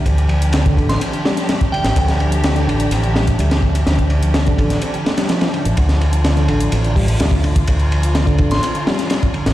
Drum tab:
RD |x-x-x-x-x-x-x-xx|x-x-x-x-x-x-xx-x|x-x-x-x-x-xxxxx-|x-x-x-x-x---x-x-|
HH |xx-xxx-xxx-xxx-x|xx-xxx-xxx-xxx-x|xx-xxx-xxx-xxx-x|xx-xxx-xxxoxxx-x|
SD |----o--o--ooo--o|-o--o-----o--o--|o---o--o--oooo--|-o--o-------o---|
BD |o----oo------o--|o----------o--o-|-o---oo---------|o---------o--o-o|

RD |x-x-x-x-x-x-x-xx|
HH |xx-xxx-xxx-xxx-x|
SD |----o--o--ooo--o|
BD |o----oo------o--|